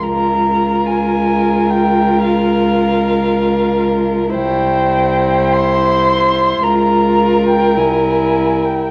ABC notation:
X:1
M:4/4
L:1/16
Q:1/4=54
K:Bbdor
V:1 name="Violin"
b3 a3 g2 f6 z2 | g4 c'4 b3 g a3 g |]
V:2 name="Violin"
B16 | c8 B8 |]
V:3 name="Viola"
F16 | =E8 F4 E4 |]
V:4 name="Cello" clef=bass
D,,16 | C,,8 D,,4 C,,4 |]